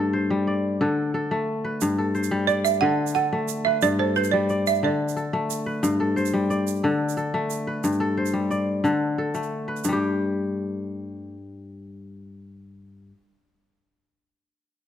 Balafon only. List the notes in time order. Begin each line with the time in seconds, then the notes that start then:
2.47 D5
2.65 E5
2.81 F#5
3.15 F#5
3.65 E5
3.83 D5
3.99 C5
4.16 B4
4.31 D5
4.67 E5
4.84 D5